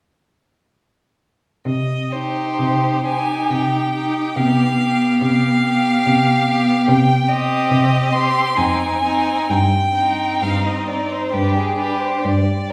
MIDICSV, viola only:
0, 0, Header, 1, 2, 480
1, 0, Start_track
1, 0, Key_signature, -3, "minor"
1, 0, Tempo, 916031
1, 875, Time_signature, 3, 2, 24, 8
1, 1835, Tempo, 854701
1, 3275, Tempo, 821918
1, 4235, Tempo, 869565
1, 4715, Tempo, 917431
1, 6884, End_track
2, 0, Start_track
2, 0, Title_t, "Viola"
2, 0, Program_c, 0, 41
2, 1115, Note_on_c, 0, 63, 29
2, 1590, Note_off_c, 0, 63, 0
2, 1596, Note_on_c, 0, 63, 31
2, 2070, Note_off_c, 0, 63, 0
2, 2084, Note_on_c, 0, 63, 31
2, 2320, Note_off_c, 0, 63, 0
2, 2331, Note_on_c, 0, 59, 28
2, 2560, Note_off_c, 0, 59, 0
2, 2568, Note_on_c, 0, 59, 32
2, 3032, Note_off_c, 0, 59, 0
2, 3035, Note_on_c, 0, 59, 32
2, 3507, Note_off_c, 0, 59, 0
2, 3522, Note_on_c, 0, 59, 35
2, 3751, Note_off_c, 0, 59, 0
2, 3995, Note_on_c, 0, 60, 40
2, 4463, Note_off_c, 0, 60, 0
2, 4468, Note_on_c, 0, 60, 42
2, 4709, Note_off_c, 0, 60, 0
2, 4717, Note_on_c, 0, 60, 38
2, 4950, Note_off_c, 0, 60, 0
2, 4957, Note_on_c, 0, 60, 42
2, 5193, Note_off_c, 0, 60, 0
2, 5437, Note_on_c, 0, 60, 35
2, 5908, Note_off_c, 0, 60, 0
2, 5914, Note_on_c, 0, 60, 29
2, 6146, Note_off_c, 0, 60, 0
2, 6150, Note_on_c, 0, 62, 30
2, 6379, Note_off_c, 0, 62, 0
2, 6382, Note_on_c, 0, 62, 30
2, 6624, Note_off_c, 0, 62, 0
2, 6884, End_track
0, 0, End_of_file